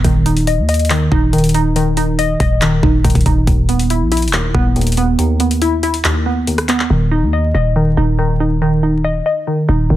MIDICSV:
0, 0, Header, 1, 4, 480
1, 0, Start_track
1, 0, Tempo, 428571
1, 50, Time_signature, 4, 2, 24, 8
1, 11162, End_track
2, 0, Start_track
2, 0, Title_t, "Synth pluck"
2, 0, Program_c, 0, 84
2, 50, Note_on_c, 0, 51, 92
2, 289, Note_on_c, 0, 63, 85
2, 531, Note_on_c, 0, 75, 94
2, 757, Note_off_c, 0, 75, 0
2, 771, Note_on_c, 0, 75, 95
2, 997, Note_off_c, 0, 51, 0
2, 1010, Note_on_c, 0, 51, 95
2, 1235, Note_off_c, 0, 63, 0
2, 1249, Note_on_c, 0, 63, 92
2, 1476, Note_off_c, 0, 51, 0
2, 1489, Note_on_c, 0, 51, 98
2, 1718, Note_off_c, 0, 63, 0
2, 1731, Note_on_c, 0, 63, 88
2, 1958, Note_off_c, 0, 51, 0
2, 1971, Note_off_c, 0, 75, 0
2, 1971, Note_on_c, 0, 51, 97
2, 2195, Note_off_c, 0, 63, 0
2, 2209, Note_on_c, 0, 63, 90
2, 2450, Note_on_c, 0, 75, 95
2, 2678, Note_off_c, 0, 75, 0
2, 2691, Note_on_c, 0, 75, 93
2, 2918, Note_off_c, 0, 51, 0
2, 2931, Note_on_c, 0, 51, 91
2, 3155, Note_off_c, 0, 63, 0
2, 3169, Note_on_c, 0, 63, 86
2, 3395, Note_off_c, 0, 51, 0
2, 3409, Note_on_c, 0, 51, 86
2, 3639, Note_off_c, 0, 63, 0
2, 3652, Note_on_c, 0, 63, 86
2, 3889, Note_off_c, 0, 51, 0
2, 3891, Note_off_c, 0, 63, 0
2, 3891, Note_off_c, 0, 75, 0
2, 3891, Note_on_c, 0, 39, 98
2, 4132, Note_on_c, 0, 59, 77
2, 4372, Note_on_c, 0, 64, 93
2, 4598, Note_off_c, 0, 64, 0
2, 4611, Note_on_c, 0, 64, 93
2, 4837, Note_off_c, 0, 39, 0
2, 4851, Note_on_c, 0, 39, 88
2, 5076, Note_off_c, 0, 59, 0
2, 5090, Note_on_c, 0, 59, 94
2, 5319, Note_off_c, 0, 39, 0
2, 5332, Note_on_c, 0, 39, 88
2, 5559, Note_off_c, 0, 59, 0
2, 5572, Note_on_c, 0, 59, 94
2, 5796, Note_off_c, 0, 39, 0
2, 5810, Note_on_c, 0, 39, 101
2, 5811, Note_off_c, 0, 64, 0
2, 6037, Note_off_c, 0, 59, 0
2, 6051, Note_on_c, 0, 59, 82
2, 6292, Note_on_c, 0, 64, 94
2, 6518, Note_off_c, 0, 64, 0
2, 6532, Note_on_c, 0, 64, 98
2, 6759, Note_off_c, 0, 39, 0
2, 6772, Note_on_c, 0, 39, 90
2, 6998, Note_off_c, 0, 59, 0
2, 7011, Note_on_c, 0, 59, 86
2, 7237, Note_off_c, 0, 39, 0
2, 7251, Note_on_c, 0, 39, 85
2, 7475, Note_off_c, 0, 59, 0
2, 7489, Note_on_c, 0, 59, 92
2, 7730, Note_off_c, 0, 39, 0
2, 7730, Note_off_c, 0, 59, 0
2, 7730, Note_on_c, 0, 51, 88
2, 7731, Note_off_c, 0, 64, 0
2, 7968, Note_on_c, 0, 63, 83
2, 8211, Note_on_c, 0, 75, 89
2, 8438, Note_off_c, 0, 75, 0
2, 8451, Note_on_c, 0, 75, 90
2, 8677, Note_off_c, 0, 51, 0
2, 8691, Note_on_c, 0, 51, 92
2, 8916, Note_off_c, 0, 63, 0
2, 8929, Note_on_c, 0, 63, 90
2, 9155, Note_off_c, 0, 51, 0
2, 9169, Note_on_c, 0, 51, 95
2, 9398, Note_off_c, 0, 63, 0
2, 9411, Note_on_c, 0, 63, 86
2, 9638, Note_off_c, 0, 51, 0
2, 9651, Note_off_c, 0, 75, 0
2, 9652, Note_on_c, 0, 51, 92
2, 9876, Note_off_c, 0, 63, 0
2, 9890, Note_on_c, 0, 63, 88
2, 10130, Note_on_c, 0, 75, 93
2, 10357, Note_off_c, 0, 75, 0
2, 10371, Note_on_c, 0, 75, 89
2, 10596, Note_off_c, 0, 51, 0
2, 10610, Note_on_c, 0, 51, 87
2, 10834, Note_off_c, 0, 63, 0
2, 10848, Note_on_c, 0, 63, 82
2, 11075, Note_off_c, 0, 51, 0
2, 11089, Note_on_c, 0, 51, 85
2, 11162, Note_off_c, 0, 51, 0
2, 11162, Note_off_c, 0, 63, 0
2, 11162, Note_off_c, 0, 75, 0
2, 11162, End_track
3, 0, Start_track
3, 0, Title_t, "808-style bass"
3, 0, Program_c, 1, 38
3, 51, Note_on_c, 1, 27, 104
3, 650, Note_on_c, 1, 39, 104
3, 667, Note_off_c, 1, 27, 0
3, 1220, Note_off_c, 1, 39, 0
3, 1250, Note_on_c, 1, 27, 105
3, 2646, Note_off_c, 1, 27, 0
3, 2689, Note_on_c, 1, 27, 109
3, 3151, Note_off_c, 1, 27, 0
3, 3171, Note_on_c, 1, 27, 108
3, 3401, Note_off_c, 1, 27, 0
3, 3410, Note_on_c, 1, 27, 105
3, 3523, Note_off_c, 1, 27, 0
3, 3530, Note_on_c, 1, 27, 104
3, 3645, Note_off_c, 1, 27, 0
3, 3651, Note_on_c, 1, 27, 103
3, 3881, Note_off_c, 1, 27, 0
3, 3890, Note_on_c, 1, 27, 107
3, 4491, Note_on_c, 1, 34, 103
3, 4508, Note_off_c, 1, 27, 0
3, 4791, Note_on_c, 1, 27, 99
3, 4807, Note_off_c, 1, 34, 0
3, 5075, Note_off_c, 1, 27, 0
3, 5091, Note_on_c, 1, 27, 106
3, 5782, Note_off_c, 1, 27, 0
3, 7730, Note_on_c, 1, 27, 105
3, 8090, Note_on_c, 1, 39, 100
3, 8107, Note_off_c, 1, 27, 0
3, 8432, Note_off_c, 1, 39, 0
3, 8451, Note_on_c, 1, 27, 102
3, 8911, Note_off_c, 1, 27, 0
3, 8930, Note_on_c, 1, 27, 98
3, 10325, Note_off_c, 1, 27, 0
3, 10850, Note_on_c, 1, 27, 100
3, 11081, Note_off_c, 1, 27, 0
3, 11090, Note_on_c, 1, 27, 108
3, 11162, Note_off_c, 1, 27, 0
3, 11162, End_track
4, 0, Start_track
4, 0, Title_t, "Drums"
4, 50, Note_on_c, 9, 36, 123
4, 50, Note_on_c, 9, 42, 79
4, 162, Note_off_c, 9, 36, 0
4, 162, Note_off_c, 9, 42, 0
4, 290, Note_on_c, 9, 42, 69
4, 402, Note_off_c, 9, 42, 0
4, 410, Note_on_c, 9, 42, 72
4, 522, Note_off_c, 9, 42, 0
4, 530, Note_on_c, 9, 42, 83
4, 642, Note_off_c, 9, 42, 0
4, 770, Note_on_c, 9, 42, 75
4, 830, Note_off_c, 9, 42, 0
4, 830, Note_on_c, 9, 42, 69
4, 890, Note_off_c, 9, 42, 0
4, 890, Note_on_c, 9, 42, 56
4, 950, Note_off_c, 9, 42, 0
4, 950, Note_on_c, 9, 42, 46
4, 1009, Note_on_c, 9, 39, 121
4, 1013, Note_off_c, 9, 42, 0
4, 1013, Note_on_c, 9, 42, 92
4, 1121, Note_off_c, 9, 39, 0
4, 1125, Note_off_c, 9, 42, 0
4, 1251, Note_on_c, 9, 36, 100
4, 1363, Note_off_c, 9, 36, 0
4, 1490, Note_on_c, 9, 42, 46
4, 1550, Note_off_c, 9, 42, 0
4, 1550, Note_on_c, 9, 42, 57
4, 1610, Note_off_c, 9, 42, 0
4, 1610, Note_on_c, 9, 42, 66
4, 1670, Note_off_c, 9, 42, 0
4, 1670, Note_on_c, 9, 42, 77
4, 1729, Note_off_c, 9, 42, 0
4, 1729, Note_on_c, 9, 42, 82
4, 1841, Note_off_c, 9, 42, 0
4, 1971, Note_on_c, 9, 42, 78
4, 2083, Note_off_c, 9, 42, 0
4, 2207, Note_on_c, 9, 42, 81
4, 2319, Note_off_c, 9, 42, 0
4, 2450, Note_on_c, 9, 42, 79
4, 2562, Note_off_c, 9, 42, 0
4, 2689, Note_on_c, 9, 42, 75
4, 2690, Note_on_c, 9, 36, 100
4, 2801, Note_off_c, 9, 42, 0
4, 2802, Note_off_c, 9, 36, 0
4, 2930, Note_on_c, 9, 39, 122
4, 2933, Note_on_c, 9, 42, 91
4, 3042, Note_off_c, 9, 39, 0
4, 3045, Note_off_c, 9, 42, 0
4, 3171, Note_on_c, 9, 36, 100
4, 3283, Note_off_c, 9, 36, 0
4, 3410, Note_on_c, 9, 36, 88
4, 3411, Note_on_c, 9, 42, 74
4, 3471, Note_off_c, 9, 42, 0
4, 3471, Note_on_c, 9, 42, 66
4, 3522, Note_off_c, 9, 36, 0
4, 3530, Note_on_c, 9, 36, 97
4, 3531, Note_off_c, 9, 42, 0
4, 3531, Note_on_c, 9, 42, 54
4, 3591, Note_off_c, 9, 42, 0
4, 3591, Note_on_c, 9, 42, 46
4, 3642, Note_off_c, 9, 36, 0
4, 3650, Note_off_c, 9, 42, 0
4, 3650, Note_on_c, 9, 36, 107
4, 3650, Note_on_c, 9, 42, 85
4, 3762, Note_off_c, 9, 36, 0
4, 3762, Note_off_c, 9, 42, 0
4, 3890, Note_on_c, 9, 36, 127
4, 3891, Note_on_c, 9, 42, 82
4, 4002, Note_off_c, 9, 36, 0
4, 4003, Note_off_c, 9, 42, 0
4, 4130, Note_on_c, 9, 42, 70
4, 4242, Note_off_c, 9, 42, 0
4, 4250, Note_on_c, 9, 42, 74
4, 4362, Note_off_c, 9, 42, 0
4, 4370, Note_on_c, 9, 42, 78
4, 4482, Note_off_c, 9, 42, 0
4, 4611, Note_on_c, 9, 42, 77
4, 4670, Note_off_c, 9, 42, 0
4, 4670, Note_on_c, 9, 42, 68
4, 4730, Note_off_c, 9, 42, 0
4, 4730, Note_on_c, 9, 42, 56
4, 4790, Note_off_c, 9, 42, 0
4, 4790, Note_on_c, 9, 42, 45
4, 4850, Note_on_c, 9, 39, 117
4, 4853, Note_off_c, 9, 42, 0
4, 4853, Note_on_c, 9, 42, 91
4, 4962, Note_off_c, 9, 39, 0
4, 4965, Note_off_c, 9, 42, 0
4, 5091, Note_on_c, 9, 36, 101
4, 5203, Note_off_c, 9, 36, 0
4, 5331, Note_on_c, 9, 42, 45
4, 5391, Note_off_c, 9, 42, 0
4, 5391, Note_on_c, 9, 42, 55
4, 5450, Note_off_c, 9, 42, 0
4, 5450, Note_on_c, 9, 42, 67
4, 5510, Note_off_c, 9, 42, 0
4, 5510, Note_on_c, 9, 42, 74
4, 5569, Note_off_c, 9, 42, 0
4, 5569, Note_on_c, 9, 42, 84
4, 5681, Note_off_c, 9, 42, 0
4, 5810, Note_on_c, 9, 42, 78
4, 5922, Note_off_c, 9, 42, 0
4, 6046, Note_on_c, 9, 46, 89
4, 6050, Note_on_c, 9, 42, 69
4, 6158, Note_off_c, 9, 46, 0
4, 6162, Note_off_c, 9, 42, 0
4, 6170, Note_on_c, 9, 42, 74
4, 6282, Note_off_c, 9, 42, 0
4, 6290, Note_on_c, 9, 42, 80
4, 6402, Note_off_c, 9, 42, 0
4, 6531, Note_on_c, 9, 42, 65
4, 6643, Note_off_c, 9, 42, 0
4, 6651, Note_on_c, 9, 42, 67
4, 6763, Note_off_c, 9, 42, 0
4, 6770, Note_on_c, 9, 39, 121
4, 6773, Note_on_c, 9, 42, 90
4, 6882, Note_off_c, 9, 39, 0
4, 6885, Note_off_c, 9, 42, 0
4, 7251, Note_on_c, 9, 42, 76
4, 7363, Note_off_c, 9, 42, 0
4, 7371, Note_on_c, 9, 37, 93
4, 7371, Note_on_c, 9, 42, 43
4, 7483, Note_off_c, 9, 37, 0
4, 7483, Note_off_c, 9, 42, 0
4, 7489, Note_on_c, 9, 42, 85
4, 7491, Note_on_c, 9, 39, 98
4, 7601, Note_off_c, 9, 42, 0
4, 7603, Note_off_c, 9, 39, 0
4, 7611, Note_on_c, 9, 39, 73
4, 7723, Note_off_c, 9, 39, 0
4, 11162, End_track
0, 0, End_of_file